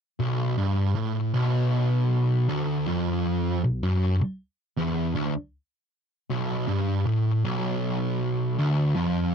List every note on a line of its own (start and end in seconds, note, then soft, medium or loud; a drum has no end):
0.20 0.57 B1 medium
0.58 0.95 G2 loud
0.95 1.33 A2 loud
1.34 2.47 B1 loud
2.49 2.86 D2 loud
2.87 3.62 F2 medium
3.64 3.82 B1 medium
3.83 4.19 F#2 medium
4.21 muted distorted electric guitar stroke medium
4.78 5.14 E2 loud
5.15 5.33 D2 loud
6.30 6.67 B1 medium
6.68 7.04 G2 loud
7.06 7.43 A2 loud
7.44 8.57 B1 loud
8.58 8.95 D2 loud
8.96 9.35 F2 medium